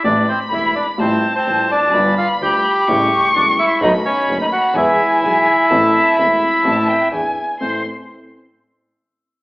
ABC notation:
X:1
M:4/4
L:1/16
Q:1/4=127
K:Am
V:1 name="Violin"
b8 a8 | b8 ^c'8 | b8 ^g8 | a4 b4 a2 g2 ^g4 |
c'2 z12 z2 |]
V:2 name="Bandoneon"
[Dd]2 [Cc]2 [Ee]2 [Dd]2 [Cc]3 [Cc]3 [Dd]2- | [Dd]2 [Ff]2 [Gg]8 [Dd]2 [Ee]2 | [^D^d]2 [^C^c]3 [Dd] [^F^f]2 [Ee]8- | [Ee]12 z4 |
c2 z12 z2 |]
V:3 name="Grand piano" clef=bass
[A,,,A,,C,E,A,E]2 z2 [E,,,E,,C,E,A,E]2 z2 [A,,,A,,C,G,A,F]2 z2 [A,,,A,,C,G,A,F]2 z/2 E,,/2 F,,/2 ^F,,/2 | [G,,,G,,D,G,B,F]2 z2 [D,,D,G,B,F]2 z2 [A,,,A,,^C,G,A,E]2 z2 [E,,,E,,C,G,A,E]2 z2 | [B,,,B,,^D,A,B,^F]2 z2 [^F,,,^F,,D,A,B,F]2 z2 [E,,E,^G,B,^G]2 z2 [B,,,B,,E,G,B,G]2 z2 | [A,,,A,,E,A,CA]2 z2 [E,,,E,,E,A,CA]2 z2 [A,,,A,,E,A,CA]2 z2 [E,,E,B,D^G]2 z2 |
[A,,,CEA]2 z12 z2 |]
V:4 name="Double bass" clef=bass
A,,,2 z2 E,,,2 z2 A,,,2 z2 A,,,2 F,,,2 | G,,,2 z2 D,,2 z2 A,,,2 z2 E,,,2 z2 | B,,,2 z2 ^F,,,2 z2 E,,2 z2 B,,,2 z2 | A,,,2 z2 E,,,2 z2 A,,,2 z2 E,,2 z2 |
A,,,2 z12 z2 |]